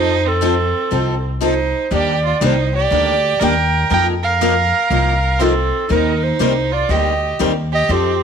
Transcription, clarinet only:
0.00 0.30 C5 loud
0.28 1.26 A4 medium
1.45 1.90 C5 medium
1.95 2.23 D5 medium
2.28 2.42 D5 medium
2.45 2.73 C5 medium
2.76 3.45 D5 loud
3.44 3.92 G5 medium
3.94 4.07 G5 loud
4.24 5.44 F5 loud
5.42 5.91 A4 medium
5.92 6.25 A#4 medium
6.24 6.75 C5 medium
6.74 6.92 D5 medium
6.91 7.40 D#5 medium
7.75 7.93 D#5 loud
7.92 8.23 G4 medium

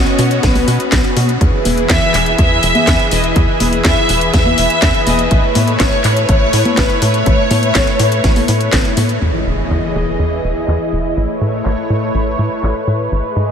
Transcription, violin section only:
0.00 0.43 C#5 loud
0.43 1.16 B4 medium
1.90 2.35 E5 loud
2.39 3.08 E5 loud
3.12 3.36 D#5 medium
3.85 4.30 E5 loud
4.34 5.03 E5 loud
5.07 5.31 D#5 medium
5.80 6.25 C#5 loud
6.29 6.74 C#5 loud
6.78 7.02 B4 loud
7.02 8.73 C#5 loud

